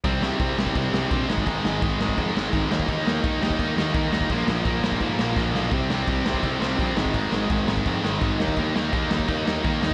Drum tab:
CC |x---x---x---x---|x---x---x---x---|x---x---x---x---|x---x---x-------|
SD |--o---o---o---o-|--o---o---o---o-|--o---o---o---o-|--o---o---o-o-o-|
BD |o---o--oo---o--o|o---o--oo---o--o|o---o--oo---o--o|o---o--oo---o---|

CC |x---x---x---x---|x---x---x---x---|x---x---x---x---|
SD |--o---o---o---o-|--o---o---o---o-|--o---o---o---o-|
BD |o---o--oo---o--o|o---o--oo---o--o|o---o--oo---o---|